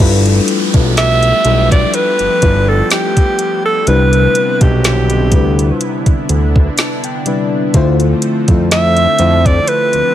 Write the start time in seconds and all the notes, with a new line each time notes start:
0.00 G1 F3 G3 A3 B3 D4 E4 F4 G4 A4 B4, kick, closed hi-hat, crash, downlifter
0.26 closed hi-hat
0.48 closed hi-hat
0.74 B1 G3 D4 E4 F4 A4 B4, kick, closed hi-hat
0.97 E5, snare, closed hi-hat
1.23 closed hi-hat
1.45 B1 G3 D4 E4 F4 A4 B4, closed hi-hat
1.71 D5, kick, closed hi-hat
1.94 B4, closed hi-hat
2.19 G1, closed hi-hat
2.42 G1 G3 D4 E4 F4 A4 D5, kick, closed hi-hat
2.69 A4
2.90 G4, snare, closed hi-hat
3.17 kick, closed hi-hat
3.39 closed hi-hat
3.65 A4
3.87 C2 C3 D3 G3 C4 D4 E4 B4, closed hi-hat
4.13 closed hi-hat
4.35 closed hi-hat
4.61 B1 G4, kick, closed hi-hat
4.84 snare, closed hi-hat
5.10 closed hi-hat
5.32 D2 C3 G3 D4 E4 B4, kick, closed hi-hat
5.59 closed hi-hat
5.81 D4, closed hi-hat
6.06 D2, kick, closed hi-hat
6.29 D2, closed hi-hat
6.56 kick
6.78 A5, snare, closed hi-hat
7.04 G5, closed hi-hat
7.25 C3 G3 D4 E4 B4 D5, closed hi-hat
7.74 D2 D3 F3 A3 C4 E4 F4 C5, kick, closed hi-hat
8.00 closed hi-hat
8.22 closed hi-hat
8.48 F2 D3 A3 E4 F4 A4, kick, closed hi-hat
8.71 E5, snare, closed hi-hat
8.97 closed hi-hat
9.19 F2 D3 A3 E4 F4 C5, closed hi-hat
9.45 D5, kick, closed hi-hat
9.68 B4, closed hi-hat
9.93 D2, closed hi-hat